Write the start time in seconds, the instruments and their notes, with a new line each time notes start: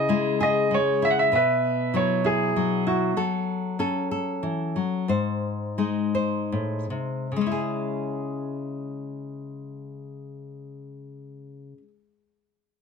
Already playing: nylon-string guitar C#3 G#4, grand piano E4 D#5
0.09 nylon-string guitar G#3 E4
0.41 nylon-string guitar G#4, grand piano D#5
0.71 nylon-string guitar G#3, grand piano C#5
1.02 nylon-string guitar E4, grand piano E5
1.10 grand piano F#5
1.19 grand piano E5
1.32 nylon-string guitar B2 B4, grand piano E5
1.36 grand piano B4
1.94 nylon-string guitar F#3 E4, grand piano C#5
2.24 nylon-string guitar E4, grand piano G#4
2.56 nylon-string guitar F#3
2.87 nylon-string guitar E4, grand piano F#4
3.17 nylon-string guitar F#3 A4
3.79 nylon-string guitar C#4 A4
4.11 nylon-string guitar A4
4.43 nylon-string guitar E3
4.76 nylon-string guitar F#3
5.08 nylon-string guitar G#2 C5
5.78 nylon-string guitar G#3 D#4
6.15 nylon-string guitar C5
6.52 nylon-string guitar A2
6.90 nylon-string guitar C3
7.32 nylon-string guitar C#3
7.36 nylon-string guitar G#3
7.41 nylon-string guitar C#4
7.47 nylon-string guitar E4
7.52 nylon-string guitar G#4